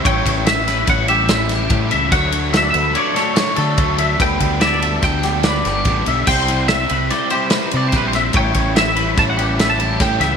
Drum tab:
CC |----------|----------|----------|x---------|
RD |xxxxxxxxxx|xxxxxxxxxx|xxxxxxxxxx|-xxxxxxxxx|
SD |--oo--oo--|--o--oo---|--o-oooo--|--o-o-o-oo|
BD |oo--o---o-|o-------o-|oo--o---o-|o-------o-|

CC |----------|
RD |xxxxxxxxxx|
SD |--o-o-o-oo|
BD |oo--o---o-|